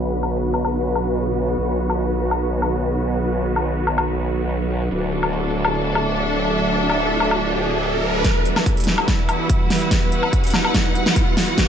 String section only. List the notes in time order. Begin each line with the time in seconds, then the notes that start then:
Already playing: B3 F#4 B4
4.91 D4
5.07 A4
5.76 E5
8.25 E4
8.48 B4
9.12 F#5